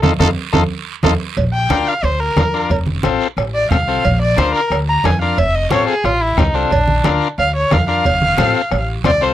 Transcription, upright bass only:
0.03 0.16 F2 loud
0.20 0.32 F2 loud
0.53 0.66 F2 medium
1.04 1.16 F2 medium
1.37 1.64 A#1 loud
1.69 1.83 D2 medium
2.03 2.30 D2 medium
2.37 2.64 F2 medium
2.70 2.97 F1 loud
3.04 3.17 A1 medium
3.37 3.64 A1 medium
3.71 3.98 C2 loud
4.05 4.31 A#1 loud
4.37 4.51 D2 loud
4.70 4.98 D2 medium
5.04 5.31 F2 medium
5.38 5.65 F1 loud
5.71 5.85 A1 medium
6.04 6.31 A1 medium
6.38 6.65 C2 medium
6.71 6.98 A#1 medium
7.05 7.18 D2 loud
7.38 7.65 D2 medium
7.72 7.98 F2 medium
8.05 8.32 F1 loud
8.38 8.52 A1 loud
8.72 8.99 A1 loud
9.05 9.32 C2 medium

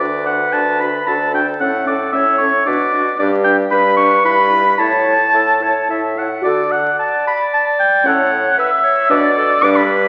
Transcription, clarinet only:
0.00 1.10 B4 medium
1.08 1.62 A4 medium
1.63 2.17 A4 medium
2.15 2.69 C#5 medium
2.68 2.94 B4 medium
2.94 3.06 F#4 medium
3.20 3.72 G4 medium
3.73 4.78 B4 loud
4.80 5.28 C#5 medium
5.34 5.65 A4 medium
5.63 5.90 C#5 medium
5.91 6.20 E5 medium
6.19 6.45 F#5 medium
6.99 8.07 D5 medium
8.05 8.57 C#5 medium
8.58 8.70 B4 medium
8.84 9.10 C#5 loud
9.10 9.22 B4 medium
9.37 9.65 A4 loud
9.63 10.08 B4 loud

